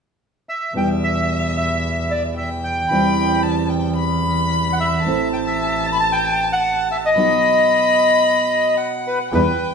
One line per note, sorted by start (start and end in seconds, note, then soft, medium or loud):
0.49 0.74 E5 medium
0.73 2.80 E2 medium
0.73 2.89 B2 medium
0.73 2.90 E3 medium
0.73 2.90 G3 medium
0.73 2.90 B3 medium
0.73 2.93 E4 medium
0.73 2.33 E5 medium
0.73 0.89 G5 medium
1.04 1.53 E5 medium
1.57 2.12 E5 medium
2.11 2.23 D5 medium
2.37 2.49 E5 medium
2.37 2.87 G5 medium
2.64 3.40 G5 medium
2.90 4.94 E2 medium
2.90 5.03 C3 medium
2.90 5.02 E3 medium
2.90 5.04 G3 medium
2.90 5.04 C4 medium
2.90 5.04 E4 medium
2.90 3.45 B5 medium
3.43 3.71 A5 medium
3.70 3.96 G5 medium
3.97 5.00 B5 medium
4.73 4.79 F#5 medium
4.80 5.28 E5 medium
5.03 7.06 A1 medium
5.03 7.15 E3 medium
5.03 7.15 A3 medium
5.03 7.16 C4 medium
5.03 7.16 E4 medium
5.03 7.12 A5 medium
5.33 5.39 G5 medium
5.47 5.86 E5 medium
5.86 5.89 A5 medium
5.92 5.98 B5 medium
6.00 6.11 A5 medium
6.12 6.48 G5 medium
6.53 6.88 F#5 medium
6.92 6.97 E5 medium
7.06 8.75 D#5 medium
7.15 9.30 B2 medium
7.15 9.31 F#3 medium
7.15 9.31 B3 medium
7.15 9.32 D#4 medium
7.15 9.32 F#4 medium
7.15 8.79 B5 medium
8.78 9.31 F#5 medium
9.07 9.19 B4 medium
9.31 9.55 E2 medium
9.31 9.41 B2 medium
9.31 9.41 E3 medium
9.31 9.41 G3 medium
9.31 9.41 B3 medium
9.31 9.42 E4 medium
9.31 9.71 B4 medium
9.31 9.74 G5 medium